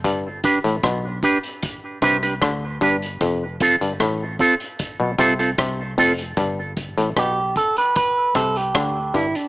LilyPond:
<<
  \new Staff \with { instrumentName = "Clean electric guitar" } { \time 4/4 \key g \mixolydian \tempo 4 = 76 r8 <d' g' b'>16 r8. <d' g' b'>16 r8. <d' g' b'>16 <d' g' b'>16 r8 <d' g' b'>16 r16 | r8 <c' f' a'>16 r8. <c' f' a'>16 r8. <c' f' a'>16 <c' f' a'>16 r8 <c' f' a'>16 r16 | r4 g'8 a'16 b'16 b'8 a'16 g'8. e'16 d'16 | }
  \new Staff \with { instrumentName = "Clav" } { \clef bass \time 4/4 \key g \mixolydian g,8 r16 a,16 b,8 r4 c8 d8 g,8 | f,8 r16 g,16 a,8 r8. b,16 c8 c8 f,8 | g,8 r16 a,16 b,8 r4 c8 d8 g,16 r16 | }
  \new Staff \with { instrumentName = "Fingered electric bass" } { \clef bass \time 4/4 \key g \mixolydian g,,8. a,,16 b,,8 r4 c,8 d,8 g,,8 | f,,8. g,,16 a,,8 r8. b,,16 c,8 c,8 f,,8 | g,,8. a,,16 b,,8 r4 c,8 d,8 g,,16 r16 | }
  \new DrumStaff \with { instrumentName = "Drums" } \drummode { \time 4/4 <hh bd>8 <hh bd>16 hh16 <hh bd ss>8 <hh bd>16 hh16 <hh bd>8 <hh bd ss>16 hh16 <hh bd ss>8 <hh bd>16 hh16 | <hh bd>8 <hh bd>16 hh16 <hh bd ss>8 <hh bd>16 hh16 <hh bd>8 <hh bd>16 hh16 <hh bd ss>8 <hho bd>16 hh16 | <hh bd>8 <hh bd>16 hh16 <hh bd ss>8 <hh bd>16 hh16 <hh bd>8 <hh bd ss>16 hh16 <hh bd ss>8 <hh bd>16 hh16 | }
>>